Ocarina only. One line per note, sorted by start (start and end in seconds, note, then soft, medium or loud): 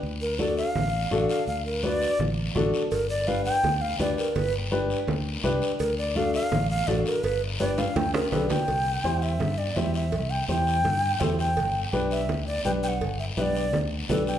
0.21 0.41 A#4 medium
0.39 0.57 D5 loud
0.58 1.28 F5 loud
1.29 1.47 F5 medium
1.47 1.65 F5 medium
1.65 1.85 A#4 medium
1.84 2.19 D5 loud
2.91 3.09 A#4 loud
3.09 3.29 D5 loud
3.27 3.44 F5 loud
3.45 3.83 G5 loud
3.81 3.99 F5 medium
4.00 4.17 D5 medium
4.18 4.37 A#4 loud
4.35 4.53 B4 loud
5.80 5.97 A#4 loud
5.98 6.18 D5 loud
6.16 6.34 F5 loud
6.34 6.69 F5 loud
6.70 6.89 F5 loud
6.88 7.05 D5 loud
7.06 7.25 A#4 loud
7.24 7.41 B4 loud
7.60 7.80 D5 loud
7.78 7.98 F5 medium
7.96 8.14 G5 medium
8.14 8.31 A#4 medium
8.32 8.49 A4 medium
8.50 9.24 G5 medium
9.22 9.60 E5 medium
9.58 9.78 D5 medium
9.76 9.94 E5 medium
9.94 10.32 E5 medium
10.30 10.48 G5 medium
10.48 11.22 G5 loud
11.20 11.38 A4 medium
11.39 11.87 G5 medium
12.11 12.45 E5 medium
12.47 12.64 D5 medium
12.65 12.71 G5 medium
12.83 12.89 G5 medium
12.88 13.17 F#5 medium
13.19 13.25 E5 medium
13.37 13.43 E5 medium
13.42 13.79 D5 medium
14.10 14.26 A4 loud
14.27 14.39 G5 loud